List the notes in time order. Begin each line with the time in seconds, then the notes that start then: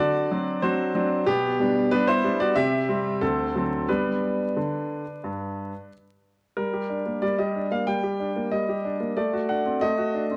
Already playing: D5
0.00 D3 F#4
0.31 F#3 C4 D4
0.62 F#3 C4 D4 F#4 C5
0.95 F#3 C4 D4
1.26 B2 B3 G4
1.60 G3 B3 D4
1.91 G3 B3 D4 B4
2.07 E4 C5
2.24 G3 B3 D4
2.40 F#4 D5
2.56 C3 G4 E5
2.89 G3 C4
3.21 D2 C4 A4
3.56 D3 F#3 C4
3.89 G3 B3 D4 B4
4.57 D3
5.24 G2
6.57 G3 A#4
6.73 G4
6.90 D4
7.06 A#3
7.22 G3 D5
7.38 G4 D#5
7.55 D4
7.71 A#3 F5
7.87 G3 G5
8.03 G4
8.20 D4
8.36 A#3
8.52 G3 D#5
8.69 G4
8.85 D4
9.00 A#3
9.17 A3 D5
9.33 F#4
9.49 D4 F#5
9.66 C4
9.81 A3 D#5
9.98 F#4
10.14 D4
10.31 C4